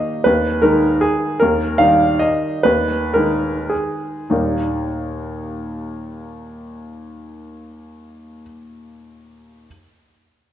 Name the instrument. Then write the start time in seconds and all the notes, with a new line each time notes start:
grand piano
Already playing: D#3 A#3 G4 D#5
0.24 D#2 B4
0.62 D#3 G#3 D#4 A#4
1.01 G#4
1.40 D#2 A#4
1.78 D#3 G3 D#4 F5
2.19 D#5
2.63 D#2 B4
3.14 D#3 G#3 D#4 A#4
3.70 G#4
4.30 D#2 A#2 G3 A#3 D#4